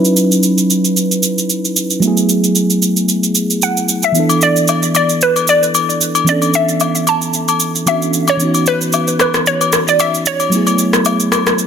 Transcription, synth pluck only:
3.63 F#5
4.04 E5
4.43 D5
4.96 D5
5.23 B4
5.49 D5
6.29 D5
6.55 E5
7.09 A5
7.88 E5
8.29 C#5
8.68 B4
9.21 B4
9.47 C#5
9.89 D5
10.00 E5
10.27 C#5

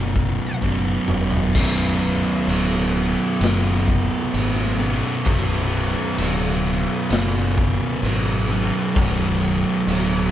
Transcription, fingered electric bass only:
Already playing: F#1
0.62 F#1
1.08 E1
1.55 B0
2.47 D1
3.40 F#1
4.34 G#1
5.26 B0
6.18 D1
7.10 F#1
8.02 G#1
8.96 B0
9.87 D1

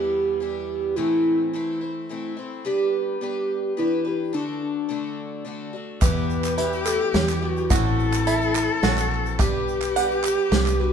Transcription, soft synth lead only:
Already playing: G4
0.41 G4
0.96 E4
1.52 E4
2.65 G4
3.22 G4
3.78 E4
4.34 D4
4.62 D4
6.01 B4
6.57 B4
6.85 A4
7.14 G4
7.42 F#4
7.70 E4
7.99 E4
9.40 G4
9.97 G4
10.81 F#4

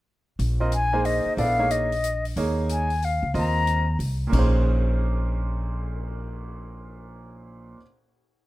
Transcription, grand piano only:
0.60 C4 F4 A#4 D#5
0.93 A#3 D#4 G#4 C5
1.38 B3 E4 A4 D5
1.59 A#3 D#4 G#4 C#5
2.37 A#3 D#4 G#4 C#5
3.34 C4 F4 A#4 D#5
4.27 A#2 A#3
4.32 C#4 D#4
4.36 G#4 C5

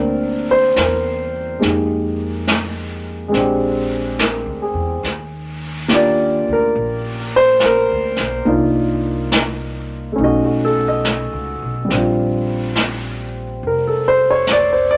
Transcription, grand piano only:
Already playing: G3 A#3 C4 D4 F4 A#4 D5
0.51 C5
0.80 A#4
1.59 G#3 A#3 D#4 G4
3.28 G#3 C4
3.36 D4 G4
4.20 A#4
4.62 G#4
5.88 A#3 D4 F4 G4
5.95 D5
6.53 A#4
7.36 C5
7.65 A#4
8.45 A#3 D4 D#4 F4
10.12 A3 C#4
10.20 D#4 F#4
10.24 D#5
10.44 F#4
10.65 A4
10.88 D#5
11.85 G3 C4
11.93 D4 F4
13.67 A#4
13.87 A4
14.08 C5
14.31 C#5
14.51 D5
14.73 C5
14.91 D5

